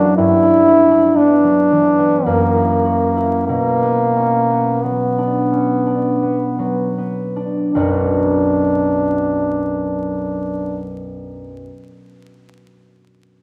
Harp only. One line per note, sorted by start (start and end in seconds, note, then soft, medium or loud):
0.00 0.22 F#2 medium
0.00 1.42 F#3 soft
0.00 1.17 G3 soft
0.00 0.21 A#3 soft
0.00 0.21 E4 soft
0.18 2.30 G2 soft
0.42 0.90 D4 soft
0.66 1.09 E4 soft
0.91 2.30 D4 soft
1.17 1.97 B3 soft
1.44 4.83 F#3 soft
1.71 2.17 E3 soft
1.98 2.30 B3 soft
2.26 3.53 F#2 soft
2.54 3.15 E4 soft
2.85 3.38 F#4 soft
3.17 3.53 E4 soft
3.49 7.39 B2 soft
3.82 4.49 B3 soft
4.16 4.73 C#4 soft
4.51 6.21 B3 soft
4.84 6.58 F#3 soft
5.18 5.85 D4 soft
5.52 6.11 C#4 soft
5.86 7.35 D4 soft
6.23 6.97 B3 soft
6.59 7.74 F#3 soft
6.98 7.75 B3 soft
7.36 7.75 D4 soft
7.75 11.65 B1 soft
7.75 11.65 F#2 soft
7.75 11.44 F#3 soft
7.75 10.87 B3 soft
7.75 10.85 D4 soft
7.75 10.85 F#4 soft